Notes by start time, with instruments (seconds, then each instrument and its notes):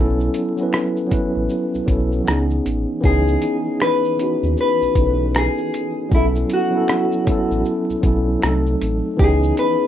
Already playing: sub bass B1, tine electric piano F#3 B3 C#4
0.00 tine electric piano E4 A4
0.20 shaker
0.34 closed hi-hat, shaker
0.56 tine electric piano F#3 B3 C#4, shaker
0.61 tine electric piano E4 B4
0.73 finger snap, cross-stick, shaker
0.97 shaker
1.07 tine electric piano F#3 B3 C#4
1.11 tine electric piano E4 B4, kick, closed hi-hat, shaker
1.36 sub bass A1
1.49 shaker
1.74 sub bass B1, shaker
1.86 sub bass B1, tine electric piano F#3 B3 C#4, kick, closed hi-hat, shaker
1.91 tine electric piano E4 A4
2.12 shaker
2.24 tine electric piano E3 B3 C#4, finger snap, shaker
2.28 sub bass C#2, tine electric piano D#4 G#4, cross-stick
2.50 shaker
2.66 sub bass A1, closed hi-hat, shaker
3.01 sub bass C#2, tine electric piano E3 B3 C#4, kick, shaker
3.05 tine electric piano D#4 G#4, clean electric guitar G#4
3.27 shaker
3.42 closed hi-hat, shaker
3.80 clean electric guitar B4, finger snap, cross-stick, shaker
4.04 shaker
4.16 tine electric piano E3 B3 C#4, closed hi-hat, shaker
4.21 tine electric piano D#4 F#4
4.43 sub bass D#2, shaker
4.57 clean electric guitar B4, shaker
4.82 sub bass B1, shaker
4.93 sub bass B1, tine electric piano E3 B3 C#4, kick, closed hi-hat, shaker
4.98 tine electric piano D#4 A4
5.06 tine electric piano B4
5.34 clean electric guitar G#4, finger snap, cross-stick, shaker
5.58 shaker
5.74 closed hi-hat, shaker
6.09 sub bass B1, tine electric piano F#3 B3 C#4, kick, shaker
6.14 tine electric piano E4 A4, clean electric guitar E4
6.35 shaker
6.50 clean electric guitar F#4, closed hi-hat, shaker
6.71 tine electric piano F#3 B3 C#4
6.76 tine electric piano E4 A4
6.88 finger snap, cross-stick, shaker
7.12 shaker
7.25 tine electric piano F#3 B3 C#4, kick, closed hi-hat, shaker
7.29 tine electric piano E4 A4
7.51 sub bass A1, shaker
7.65 shaker
7.90 sub bass B1, shaker
8.01 sub bass B1, tine electric piano F#3 B3 C#4, kick, closed hi-hat, shaker
8.06 tine electric piano E4 A4
8.40 sub bass C2, tine electric piano F#3 A3 C4, finger snap, cross-stick, shaker
8.45 tine electric piano D#4 A4
8.66 shaker
8.81 sub bass A1, closed hi-hat, shaker
9.17 sub bass C#2, tine electric piano E3 B3 C#4, clean electric guitar G#4, kick, shaker
9.22 tine electric piano D#4 G#4
9.43 shaker
9.57 clean electric guitar B4, closed hi-hat, shaker